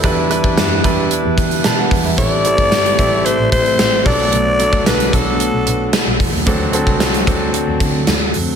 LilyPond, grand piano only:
\new Staff \with { instrumentName = "Grand piano" } { \time 4/4 \key d \mixolydian \tempo 4 = 112 << { a'16 r2 r8. <e'' a''>16 <b' fis''>8 <b' e''>16~ | <b' e''>16 r2. r8. | r1 | r1 | } \\ { <g d' e' b'>8 <g d' e' b'>4 <g d' e' b'>2 r8 | <g c' e' a'>8 <g c' e' a'>4 <g c' e' a'>2 <fis b d' a'>8~ | <fis b d' a'>8 <fis b d' a'>4 <fis b d' a'>2 r8 | <fis c' d' a'>8 <fis c' d' a'>4 <fis c' d' a'>2 r8 | } >> }